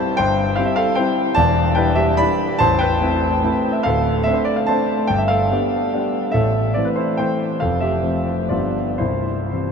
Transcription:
0.00 0.15 G3 soft
0.00 0.15 C4 soft
0.00 0.15 E4 soft
0.00 0.15 C5 medium
0.00 0.17 A5 medium
0.17 0.57 G1 medium
0.17 0.57 G2 medium
0.17 0.54 C5 medium
0.17 0.57 G5 loud
0.56 0.93 G3 soft
0.56 0.93 C4 soft
0.56 0.94 E4 soft
0.56 0.66 F5 medium
0.66 0.76 E5 medium
0.76 0.95 A4 medium
0.76 0.96 F5 medium
0.95 1.32 G3 soft
0.95 1.33 C4 soft
0.95 1.33 E4 soft
0.95 1.33 C5 medium
0.95 1.36 G5 medium
1.35 1.76 E1 medium
1.35 1.76 E2 medium
1.35 1.74 D5 medium
1.35 1.76 A5 loud
1.75 2.14 G3 soft
1.75 2.15 D4 soft
1.75 2.15 E4 soft
1.75 1.95 B4 medium
1.75 1.96 G5 medium
1.95 2.17 G4 medium
1.95 2.18 E5 medium
2.17 2.56 G3 soft
2.17 2.56 D4 soft
2.17 2.56 E4 soft
2.17 2.57 D5 medium
2.17 2.59 B5 medium
2.59 3.00 A0 medium
2.59 2.99 A1 medium
2.59 2.79 C5 medium
2.59 2.79 A5 loud
2.79 3.70 B4 medium
2.79 3.73 G5 medium
3.01 3.39 A3 soft
3.01 3.39 C4 soft
3.01 3.39 E4 soft
3.43 3.80 A3 soft
3.43 3.81 C4 soft
3.43 3.81 E4 soft
3.72 3.83 E5 medium
3.83 4.25 D1 soft
3.83 4.25 D2 medium
3.83 4.23 A4 medium
3.83 4.25 F5 medium
4.24 4.64 A3 soft
4.24 4.64 C4 soft
4.24 4.65 D4 soft
4.24 4.35 E5 medium
4.33 4.45 C5 medium
4.45 4.56 D5 medium
4.56 4.67 F5 medium
4.67 5.06 A3 soft
4.67 5.06 C4 soft
4.67 5.07 D4 soft
4.67 5.07 C5 medium
4.67 5.09 A5 medium
5.07 5.49 G1 soft
5.07 5.49 G2 medium
5.07 5.19 G5 medium
5.18 5.29 E5 medium
5.28 6.30 A4 medium
5.28 6.33 F5 medium
5.51 5.89 G3 soft
5.51 5.90 B3 soft
5.51 5.90 D4 soft
5.93 6.31 G3 soft
5.93 6.31 B3 soft
5.93 6.31 D4 soft
6.32 6.75 A1 soft
6.32 6.75 A2 medium
6.32 6.73 A4 medium
6.32 6.75 E5 medium
6.74 7.16 E3 soft
6.74 7.16 A3 soft
6.74 7.16 C4 soft
6.74 6.86 D5 medium
6.85 6.97 B4 soft
6.96 7.18 E4 soft
6.96 7.17 C5 medium
7.17 7.58 E3 soft
7.17 7.58 A3 soft
7.17 7.58 C4 soft
7.17 7.58 C5 medium
7.17 7.61 G5 medium
7.60 8.03 F1 soft
7.60 8.03 F2 soft
7.60 7.81 A4 soft
7.60 7.81 F5 medium
7.80 8.47 G4 soft
7.80 8.50 E5 medium
8.03 8.46 F3 soft
8.03 8.47 A3 soft
8.03 8.47 C4 soft
8.48 8.99 G1 soft
8.48 8.99 G2 soft
8.48 8.96 F3 soft
8.48 8.96 G3 soft
8.48 8.97 B3 soft
8.48 8.96 F4 soft
8.48 8.99 D5 medium
8.98 9.49 C1 soft
8.98 9.49 C2 soft
8.98 9.72 E4 soft
8.98 9.72 C5 medium
9.52 9.72 E3 soft
9.52 9.72 G3 soft
9.52 9.72 C4 soft

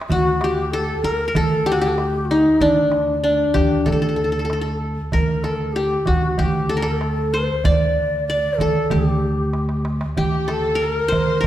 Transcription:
0.02 darbuka ka medium
0.09 0.91 D2 medium
0.09 0.43 F#4 medium
0.09 0.50 F#4 medium
0.09 darbuka dum medium
0.25 darbuka ka soft
0.41 0.73 G4 medium
0.41 1.66 G4 medium
0.41 darbuka tek medium
0.71 1.04 A4 medium
0.71 1.10 A4 medium
0.88 darbuka ka soft
1.03 1.31 D2 medium
1.03 1.34 A#4 medium
1.03 1.27 A#4 medium
1.28 1.42 A#4 medium
1.34 2.44 D2 medium
1.34 1.68 A4 medium
1.34 2.53 A4 medium
1.34 darbuka dum medium
1.66 1.78 G4 medium
1.66 1.80 G4 medium
1.72 1.88 F#4 medium
1.80 1.89 G4 medium
1.80 3.07 G4 medium
1.88 1.96 A4 medium
1.95 2.27 G4 medium
1.95 darbuka tek medium
2.25 2.32 F#4 medium
2.31 2.65 D#4 medium
2.31 2.67 D#4 medium
2.60 3.42 D2 medium
2.60 3.23 D4 medium
2.60 darbuka dum medium
2.76 darbuka ka soft
2.92 darbuka tek medium
3.07 darbuka ka soft
3.24 4.73 D4 medium
3.24 3.88 D4 medium
3.39 darbuka ka soft
3.54 3.69 D2 medium
3.54 4.80 G4 medium
3.54 darbuka dum medium
3.86 4.96 D2 medium
3.86 3.92 A4 medium
3.86 4.81 A4 medium
3.86 darbuka dum medium
3.92 4.01 A4 medium
4.02 4.08 A4 medium
4.09 4.16 A4 soft
4.16 4.24 A4 soft
4.24 4.32 A4 soft
4.32 4.39 A4 medium
4.39 4.44 A4 soft
4.45 4.52 A4 medium
4.50 4.61 A4 medium
4.50 darbuka tek medium
4.61 5.19 A4 medium
5.12 5.95 D2 medium
5.12 5.44 A#4 medium
5.12 5.50 A#4 medium
5.12 darbuka dum medium
5.28 darbuka ka soft
5.43 5.51 A4 medium
5.43 6.61 A4 medium
5.43 darbuka tek soft
5.49 5.57 A#4 medium
5.56 5.74 A4 medium
5.56 darbuka ka soft
5.73 6.07 G4 medium
5.73 6.13 G4 medium
6.05 6.35 D2 medium
6.05 6.38 F#4 medium
6.05 6.45 F#4 medium
6.05 darbuka dum medium
6.38 7.48 D2 medium
6.38 6.86 G4 medium
6.38 7.64 G4 medium
6.38 darbuka dum medium
6.69 6.82 A4 medium
6.77 6.88 A#4 medium
6.82 8.00 A4 medium
6.82 6.93 A4 medium
6.91 6.99 A#4 medium
6.97 7.35 A4 medium
6.97 darbuka tek medium
7.33 7.66 C5 medium
7.33 8.39 C5 medium
7.64 8.47 D2 medium
7.64 8.27 D5 medium
7.64 8.29 D5 medium
7.64 darbuka dum medium
7.81 darbuka ka soft
8.27 8.59 D5 medium
8.27 9.28 D5 medium
8.27 darbuka ka soft
8.43 darbuka ka soft
8.58 8.73 D2 medium
8.58 8.94 A4 medium
8.58 9.78 A4 medium
8.58 darbuka dum medium
8.90 10.01 D2 medium
8.90 10.17 G4 medium
8.90 9.86 G4 medium
8.90 darbuka dum medium
9.53 darbuka tek medium
9.69 darbuka ka medium
9.85 darbuka tek medium
10.01 darbuka ka medium
10.17 11.00 D2 medium
10.17 11.43 G4 medium
10.17 10.52 G4 medium
10.17 10.48 G4 medium
10.17 darbuka dum medium
10.33 darbuka ka soft
10.48 10.81 A4 medium
10.48 10.84 A4 medium
10.48 10.81 A4 medium
10.48 darbuka tek medium
10.65 darbuka ka soft
10.75 11.40 A#4 medium
10.82 11.44 A#4 medium
10.82 11.13 A#4 medium
10.97 darbuka ka soft
11.08 11.39 D2 medium
11.08 11.47 C5 medium
11.12 11.45 C5 medium
11.12 darbuka dum medium
11.41 11.47 D2 loud
11.41 11.47 A#4 medium

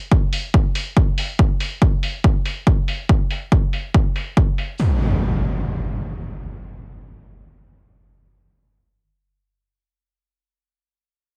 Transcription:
0.11 kick loud
0.33 open hi-hat loud
0.54 kick loud
0.75 open hi-hat loud
0.97 kick loud
1.18 open hi-hat loud
1.39 kick loud
1.60 open hi-hat loud
1.82 kick loud
2.03 open hi-hat loud
2.24 kick loud
2.45 open hi-hat medium
2.67 kick loud
2.88 open hi-hat loud
3.09 kick loud
3.31 open hi-hat loud
3.52 kick loud
3.73 open hi-hat medium
3.94 kick loud
4.16 open hi-hat loud
4.37 kick loud
4.58 open hi-hat loud
4.79 impact medium

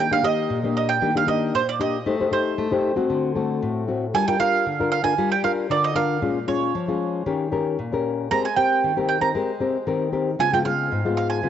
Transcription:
0.00 0.47 D#3 medium
0.00 0.12 G5 medium
0.11 0.20 A#3 medium
0.11 0.20 D4 medium
0.11 0.20 G4 medium
0.11 0.25 F5 medium
0.23 0.59 A#3 medium
0.23 0.59 G4 medium
0.23 0.76 D#5 medium
0.50 1.00 A#2 medium
0.64 0.98 A#3 medium
0.64 0.99 D4 medium
0.64 0.99 G4 medium
0.77 0.89 D#5 medium
0.89 1.13 G5 medium
1.02 1.51 D#3 medium
1.02 1.10 A#3 medium
1.02 1.10 D4 soft
1.02 1.10 G4 soft
1.15 1.24 A#3 soft
1.15 1.24 D4 medium
1.15 1.25 G4 medium
1.15 1.28 F5 medium
1.27 1.61 A#3 medium
1.27 1.61 D4 medium
1.27 1.61 G4 medium
1.27 1.52 D#5 medium
1.54 2.04 A#2 medium
1.54 1.68 C5 medium
1.69 1.74 D5 medium
1.79 1.97 A#3 soft
1.79 1.97 D4 soft
1.79 1.97 G4 medium
1.79 2.32 D#5 medium
2.06 2.56 A3 medium
2.06 2.15 D#4 soft
2.06 2.15 G4 soft
2.06 2.16 C5 medium
2.20 2.28 D#4 medium
2.20 2.29 G4 medium
2.20 2.29 C5 medium
2.31 2.67 D#4 medium
2.31 2.67 G4 soft
2.31 2.67 C5 medium
2.31 3.85 C5 medium
2.58 2.95 A3 medium
2.71 2.93 D#4 medium
2.71 2.93 G4 medium
2.71 2.94 C5 medium
2.96 3.31 A3 medium
2.96 3.32 C4 medium
2.96 3.32 F#4 medium
3.10 3.60 D3 medium
3.35 3.84 A3 medium
3.35 3.84 C4 medium
3.35 3.84 F#4 medium
3.62 4.12 A2 medium
3.88 4.05 A3 soft
3.88 4.05 C4 soft
3.88 4.05 F#4 medium
4.14 4.64 G3 medium
4.14 4.23 D4 soft
4.14 4.23 F4 medium
4.14 4.24 A#4 medium
4.14 4.27 G#5 loud
4.28 4.37 D4 medium
4.28 4.37 F4 medium
4.28 4.37 A#4 medium
4.28 4.39 G5 medium
4.40 4.65 D4 medium
4.40 4.65 F4 medium
4.40 4.65 A#4 medium
4.40 4.89 F5 medium
4.66 5.16 D3 medium
4.80 5.02 D4 medium
4.80 5.02 F4 medium
4.80 5.02 A#4 medium
4.92 5.03 F5 medium
5.04 5.14 D4 medium
5.04 5.14 F4 medium
5.04 5.14 A#4 medium
5.04 5.31 G#5 medium
5.18 5.68 G3 medium
5.18 5.34 D4 soft
5.18 5.34 F4 medium
5.18 5.34 A#4 medium
5.32 5.44 G5 medium
5.44 5.66 D4 medium
5.44 5.66 F4 soft
5.44 5.67 A#4 medium
5.44 5.51 F5 medium
5.70 6.20 D3 medium
5.70 5.92 D4 soft
5.70 5.93 F4 medium
5.70 5.93 A#4 medium
5.70 5.84 D5 medium
5.84 5.96 D#5 medium
5.95 6.20 D4 soft
5.95 6.20 F4 medium
5.95 6.20 A#4 medium
5.95 6.45 F5 medium
6.22 6.72 A#2 medium
6.22 6.38 G#3 soft
6.22 6.38 C#4 medium
6.22 6.38 F4 soft
6.47 6.73 G#3 medium
6.47 6.73 C#4 medium
6.47 6.73 F4 medium
6.47 8.01 C#5 medium
6.75 7.24 F3 medium
6.88 7.23 G#3 medium
6.88 7.23 C#4 medium
6.88 7.23 F4 medium
7.26 7.76 D#3 medium
7.26 7.48 C#4 soft
7.26 7.49 G4 medium
7.26 7.49 A#4 medium
7.52 7.77 C#4 medium
7.52 7.77 G4 medium
7.52 7.77 A#4 medium
7.79 8.29 A#2 medium
7.92 8.27 C#4 medium
7.92 8.28 G4 soft
7.92 8.28 A#4 medium
8.31 8.81 G#3 medium
8.31 8.47 C4 soft
8.31 8.47 G4 soft
8.31 8.47 A#4 medium
8.31 8.43 A#5 loud
8.45 8.56 G#5 medium
8.56 8.92 C4 soft
8.56 8.92 G4 soft
8.56 8.92 A#4 medium
8.56 9.07 G5 medium
8.84 9.33 D#3 medium
8.97 9.18 C4 medium
8.97 9.19 G4 medium
8.97 9.19 A#4 medium
9.09 9.21 G5 medium
9.21 9.31 C4 medium
9.21 9.31 G4 medium
9.21 9.31 A#4 medium
9.21 9.28 A#5 medium
9.35 9.85 G#3 medium
9.35 9.50 C4 soft
9.35 9.51 G4 soft
9.35 9.51 A#4 soft
9.60 9.76 C4 medium
9.60 9.76 G4 soft
9.60 9.77 A#4 medium
9.87 10.37 D#3 medium
9.87 10.09 C4 soft
9.87 10.09 G4 soft
9.87 10.09 A#4 medium
10.12 10.30 C4 soft
10.12 10.30 G4 soft
10.12 10.30 A#4 medium
10.39 10.89 C#3 medium
10.39 10.48 G#3 soft
10.39 10.48 B3 soft
10.39 10.49 F4 medium
10.39 10.52 G#5 loud
10.53 10.62 G#3 medium
10.53 10.62 B3 medium
10.53 10.62 F4 medium
10.53 10.58 G5 medium
10.65 11.00 G#3 soft
10.65 11.00 B3 medium
10.65 11.00 F4 medium
10.65 11.16 F5 medium
10.92 11.41 G#2 medium
11.05 11.40 G#3 medium
11.05 11.40 B3 medium
11.05 11.40 F4 medium
11.17 11.29 F5 medium
11.30 11.49 G#5 medium
11.43 11.49 C#3 medium
11.43 11.49 G#3 medium
11.43 11.49 B3 soft
11.43 11.49 F4 medium

